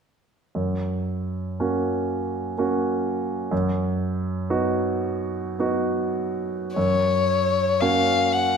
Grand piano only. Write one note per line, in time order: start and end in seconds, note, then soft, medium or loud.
0.55 1.56 F#2 soft
1.60 2.53 A#3 soft
1.60 2.54 C#4 soft
1.60 2.54 F#4 soft
2.58 3.48 A#3 soft
2.58 3.48 C#4 soft
2.58 3.48 F#4 soft
3.51 4.47 F#2 soft
4.50 5.55 B3 soft
4.50 5.55 D#4 soft
4.50 5.55 F#4 soft
5.59 6.73 B3 soft
5.59 6.73 D#4 soft
5.59 6.73 F#4 soft
6.76 7.78 F#2 soft
7.81 8.57 A#3 soft
7.81 8.57 C#4 soft
7.81 8.57 F#4 soft